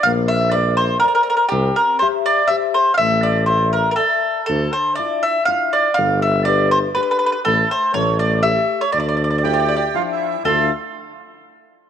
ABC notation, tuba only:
X:1
M:3/4
L:1/8
Q:"Swing" 1/4=121
K:Dm
V:1 name="Tuba" clef=bass
B,,,6 | C,, z4 z | A,,,6 | D,, z4 z |
G,,,6 | A,,, z A,,,4 | D,,6 | D,, z4 z |]